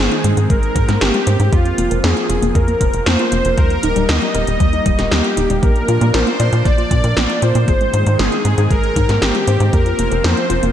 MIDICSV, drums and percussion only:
0, 0, Header, 1, 2, 480
1, 0, Start_track
1, 0, Tempo, 512821
1, 1427, Time_signature, 4, 2, 24, 8
1, 10037, End_track
2, 0, Start_track
2, 0, Title_t, "Drums"
2, 108, Note_on_c, 9, 42, 26
2, 202, Note_off_c, 9, 42, 0
2, 228, Note_on_c, 9, 42, 96
2, 322, Note_off_c, 9, 42, 0
2, 348, Note_on_c, 9, 42, 53
2, 441, Note_off_c, 9, 42, 0
2, 468, Note_on_c, 9, 36, 120
2, 469, Note_on_c, 9, 42, 55
2, 561, Note_off_c, 9, 36, 0
2, 562, Note_off_c, 9, 42, 0
2, 589, Note_on_c, 9, 42, 26
2, 682, Note_off_c, 9, 42, 0
2, 708, Note_on_c, 9, 36, 105
2, 708, Note_on_c, 9, 42, 93
2, 801, Note_off_c, 9, 36, 0
2, 802, Note_off_c, 9, 42, 0
2, 829, Note_on_c, 9, 38, 37
2, 829, Note_on_c, 9, 42, 53
2, 922, Note_off_c, 9, 38, 0
2, 922, Note_off_c, 9, 42, 0
2, 948, Note_on_c, 9, 38, 115
2, 948, Note_on_c, 9, 42, 51
2, 1042, Note_off_c, 9, 38, 0
2, 1042, Note_off_c, 9, 42, 0
2, 1068, Note_on_c, 9, 42, 27
2, 1162, Note_off_c, 9, 42, 0
2, 1187, Note_on_c, 9, 42, 91
2, 1281, Note_off_c, 9, 42, 0
2, 1307, Note_on_c, 9, 42, 55
2, 1401, Note_off_c, 9, 42, 0
2, 1428, Note_on_c, 9, 36, 124
2, 1428, Note_on_c, 9, 42, 50
2, 1522, Note_off_c, 9, 36, 0
2, 1522, Note_off_c, 9, 42, 0
2, 1549, Note_on_c, 9, 42, 26
2, 1642, Note_off_c, 9, 42, 0
2, 1668, Note_on_c, 9, 42, 90
2, 1762, Note_off_c, 9, 42, 0
2, 1789, Note_on_c, 9, 42, 53
2, 1882, Note_off_c, 9, 42, 0
2, 1909, Note_on_c, 9, 38, 122
2, 1909, Note_on_c, 9, 42, 53
2, 2002, Note_off_c, 9, 38, 0
2, 2002, Note_off_c, 9, 42, 0
2, 2029, Note_on_c, 9, 42, 26
2, 2123, Note_off_c, 9, 42, 0
2, 2149, Note_on_c, 9, 42, 92
2, 2243, Note_off_c, 9, 42, 0
2, 2269, Note_on_c, 9, 42, 52
2, 2363, Note_off_c, 9, 42, 0
2, 2388, Note_on_c, 9, 36, 114
2, 2389, Note_on_c, 9, 42, 53
2, 2482, Note_off_c, 9, 36, 0
2, 2482, Note_off_c, 9, 42, 0
2, 2508, Note_on_c, 9, 42, 26
2, 2602, Note_off_c, 9, 42, 0
2, 2628, Note_on_c, 9, 36, 109
2, 2628, Note_on_c, 9, 42, 94
2, 2722, Note_off_c, 9, 36, 0
2, 2722, Note_off_c, 9, 42, 0
2, 2747, Note_on_c, 9, 42, 52
2, 2841, Note_off_c, 9, 42, 0
2, 2868, Note_on_c, 9, 38, 120
2, 2868, Note_on_c, 9, 42, 50
2, 2961, Note_off_c, 9, 38, 0
2, 2961, Note_off_c, 9, 42, 0
2, 2987, Note_on_c, 9, 42, 26
2, 3081, Note_off_c, 9, 42, 0
2, 3107, Note_on_c, 9, 42, 87
2, 3201, Note_off_c, 9, 42, 0
2, 3227, Note_on_c, 9, 42, 53
2, 3321, Note_off_c, 9, 42, 0
2, 3347, Note_on_c, 9, 42, 48
2, 3348, Note_on_c, 9, 36, 120
2, 3440, Note_off_c, 9, 42, 0
2, 3442, Note_off_c, 9, 36, 0
2, 3467, Note_on_c, 9, 42, 25
2, 3560, Note_off_c, 9, 42, 0
2, 3586, Note_on_c, 9, 42, 88
2, 3680, Note_off_c, 9, 42, 0
2, 3707, Note_on_c, 9, 42, 52
2, 3800, Note_off_c, 9, 42, 0
2, 3827, Note_on_c, 9, 38, 122
2, 3827, Note_on_c, 9, 42, 53
2, 3921, Note_off_c, 9, 38, 0
2, 3921, Note_off_c, 9, 42, 0
2, 3947, Note_on_c, 9, 42, 25
2, 4041, Note_off_c, 9, 42, 0
2, 4067, Note_on_c, 9, 42, 88
2, 4161, Note_off_c, 9, 42, 0
2, 4187, Note_on_c, 9, 42, 50
2, 4281, Note_off_c, 9, 42, 0
2, 4307, Note_on_c, 9, 42, 51
2, 4308, Note_on_c, 9, 36, 111
2, 4401, Note_off_c, 9, 36, 0
2, 4401, Note_off_c, 9, 42, 0
2, 4427, Note_on_c, 9, 42, 24
2, 4521, Note_off_c, 9, 42, 0
2, 4547, Note_on_c, 9, 42, 88
2, 4548, Note_on_c, 9, 36, 104
2, 4641, Note_off_c, 9, 42, 0
2, 4642, Note_off_c, 9, 36, 0
2, 4668, Note_on_c, 9, 38, 36
2, 4668, Note_on_c, 9, 42, 50
2, 4761, Note_off_c, 9, 38, 0
2, 4761, Note_off_c, 9, 42, 0
2, 4788, Note_on_c, 9, 38, 116
2, 4788, Note_on_c, 9, 42, 49
2, 4882, Note_off_c, 9, 38, 0
2, 4882, Note_off_c, 9, 42, 0
2, 4908, Note_on_c, 9, 42, 24
2, 5002, Note_off_c, 9, 42, 0
2, 5028, Note_on_c, 9, 42, 84
2, 5122, Note_off_c, 9, 42, 0
2, 5148, Note_on_c, 9, 42, 54
2, 5241, Note_off_c, 9, 42, 0
2, 5268, Note_on_c, 9, 36, 116
2, 5268, Note_on_c, 9, 42, 48
2, 5361, Note_off_c, 9, 36, 0
2, 5362, Note_off_c, 9, 42, 0
2, 5388, Note_on_c, 9, 42, 25
2, 5482, Note_off_c, 9, 42, 0
2, 5508, Note_on_c, 9, 42, 83
2, 5601, Note_off_c, 9, 42, 0
2, 5628, Note_on_c, 9, 42, 50
2, 5722, Note_off_c, 9, 42, 0
2, 5748, Note_on_c, 9, 38, 118
2, 5748, Note_on_c, 9, 42, 51
2, 5841, Note_off_c, 9, 38, 0
2, 5841, Note_off_c, 9, 42, 0
2, 5868, Note_on_c, 9, 42, 24
2, 5962, Note_off_c, 9, 42, 0
2, 5988, Note_on_c, 9, 42, 87
2, 6081, Note_off_c, 9, 42, 0
2, 6108, Note_on_c, 9, 42, 49
2, 6202, Note_off_c, 9, 42, 0
2, 6228, Note_on_c, 9, 36, 113
2, 6229, Note_on_c, 9, 42, 50
2, 6322, Note_off_c, 9, 36, 0
2, 6322, Note_off_c, 9, 42, 0
2, 6349, Note_on_c, 9, 42, 24
2, 6442, Note_off_c, 9, 42, 0
2, 6468, Note_on_c, 9, 36, 103
2, 6468, Note_on_c, 9, 42, 86
2, 6562, Note_off_c, 9, 36, 0
2, 6562, Note_off_c, 9, 42, 0
2, 6588, Note_on_c, 9, 42, 49
2, 6682, Note_off_c, 9, 42, 0
2, 6708, Note_on_c, 9, 38, 111
2, 6708, Note_on_c, 9, 42, 47
2, 6802, Note_off_c, 9, 38, 0
2, 6802, Note_off_c, 9, 42, 0
2, 6828, Note_on_c, 9, 42, 25
2, 6922, Note_off_c, 9, 42, 0
2, 6948, Note_on_c, 9, 42, 81
2, 7041, Note_off_c, 9, 42, 0
2, 7068, Note_on_c, 9, 42, 52
2, 7161, Note_off_c, 9, 42, 0
2, 7188, Note_on_c, 9, 36, 110
2, 7188, Note_on_c, 9, 42, 48
2, 7281, Note_off_c, 9, 42, 0
2, 7282, Note_off_c, 9, 36, 0
2, 7308, Note_on_c, 9, 42, 24
2, 7401, Note_off_c, 9, 42, 0
2, 7428, Note_on_c, 9, 42, 87
2, 7522, Note_off_c, 9, 42, 0
2, 7549, Note_on_c, 9, 42, 48
2, 7642, Note_off_c, 9, 42, 0
2, 7669, Note_on_c, 9, 38, 111
2, 7669, Note_on_c, 9, 42, 49
2, 7763, Note_off_c, 9, 38, 0
2, 7763, Note_off_c, 9, 42, 0
2, 7789, Note_on_c, 9, 42, 24
2, 7883, Note_off_c, 9, 42, 0
2, 7909, Note_on_c, 9, 42, 87
2, 8002, Note_off_c, 9, 42, 0
2, 8029, Note_on_c, 9, 42, 48
2, 8123, Note_off_c, 9, 42, 0
2, 8148, Note_on_c, 9, 36, 106
2, 8150, Note_on_c, 9, 42, 50
2, 8242, Note_off_c, 9, 36, 0
2, 8243, Note_off_c, 9, 42, 0
2, 8270, Note_on_c, 9, 42, 24
2, 8363, Note_off_c, 9, 42, 0
2, 8388, Note_on_c, 9, 36, 94
2, 8389, Note_on_c, 9, 42, 86
2, 8482, Note_off_c, 9, 36, 0
2, 8483, Note_off_c, 9, 42, 0
2, 8510, Note_on_c, 9, 38, 35
2, 8510, Note_on_c, 9, 42, 50
2, 8603, Note_off_c, 9, 38, 0
2, 8603, Note_off_c, 9, 42, 0
2, 8629, Note_on_c, 9, 38, 106
2, 8629, Note_on_c, 9, 42, 50
2, 8723, Note_off_c, 9, 38, 0
2, 8723, Note_off_c, 9, 42, 0
2, 8749, Note_on_c, 9, 42, 24
2, 8843, Note_off_c, 9, 42, 0
2, 8869, Note_on_c, 9, 42, 83
2, 8962, Note_off_c, 9, 42, 0
2, 8989, Note_on_c, 9, 42, 52
2, 9082, Note_off_c, 9, 42, 0
2, 9108, Note_on_c, 9, 36, 111
2, 9108, Note_on_c, 9, 42, 49
2, 9202, Note_off_c, 9, 36, 0
2, 9202, Note_off_c, 9, 42, 0
2, 9229, Note_on_c, 9, 42, 25
2, 9322, Note_off_c, 9, 42, 0
2, 9349, Note_on_c, 9, 42, 89
2, 9442, Note_off_c, 9, 42, 0
2, 9468, Note_on_c, 9, 42, 51
2, 9562, Note_off_c, 9, 42, 0
2, 9588, Note_on_c, 9, 38, 113
2, 9588, Note_on_c, 9, 42, 51
2, 9682, Note_off_c, 9, 38, 0
2, 9682, Note_off_c, 9, 42, 0
2, 9709, Note_on_c, 9, 42, 25
2, 9802, Note_off_c, 9, 42, 0
2, 9828, Note_on_c, 9, 42, 90
2, 9922, Note_off_c, 9, 42, 0
2, 9948, Note_on_c, 9, 42, 50
2, 10037, Note_off_c, 9, 42, 0
2, 10037, End_track
0, 0, End_of_file